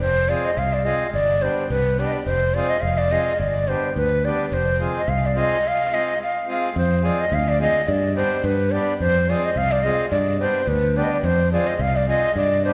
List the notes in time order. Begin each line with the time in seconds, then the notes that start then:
0.00 F1 C5
0.28 G#3 C4 F4 G#4 D5
0.45 D#5
0.57 C2 F5
0.73 D5
0.84 G#3 C4 F4 G#4 D#5
1.13 G1 D5
1.41 G3 B3 D4 G4 C5
1.70 C2 B4
1.98 G3 B3 D4 G4 D5
2.07 D#5
2.13 D5
2.26 F1 C5
2.54 G#3 C4 F4 G#4 D5
2.70 D#5
2.81 F1 F5
2.98 D5
3.11 G#3 C4 F4 G#4 D#5
3.39 G1 D5
3.68 G3 B3 D4 G4 C5
3.96 D2 B4
4.24 G3 B3 D4 G4 D5
4.52 F1 C5
4.79 G#3 C4 F4 G#4
4.97 D#5
5.08 C2 F5
5.26 D5
5.35 G#3 C4 F4 G#4 D#5
5.68 F5
5.92 G#3 C4 F4 G#4 D#5
6.22 F5
6.47 G#3 C4 F4 G#4 F5
6.76 F2 C5
7.02 G#3 C4 F4 G#4 D5
7.20 D#5
7.32 D2 F5
7.49 D5
7.59 G#3 C4 F4 G#4 D#5
7.88 G2 D5
8.15 G3 B3 D4 G4 C5
8.44 G2 B4
8.71 G3 B3 D4 G4 D5
9.00 F2 C5
9.28 G#3 C4 F4 G#4 D5
9.44 D#5
9.56 C2 F5
9.72 D5
9.83 G#3 C4 F4 G#4 D#5
10.10 G2 D5
10.39 G3 B3 D4 G4 C5
10.67 D2 B4
10.95 G3 B3 D4 G4 D5
11.03 D#5
11.12 D5
11.23 F2 C5
11.52 G#3 C4 F4 G#4 D5
11.67 D#5
11.79 C2 F5
11.96 D5
12.07 G#3 C4 F4 G#4 D#5
12.36 G2 D5
12.64 G3 B3 D4 G4 C5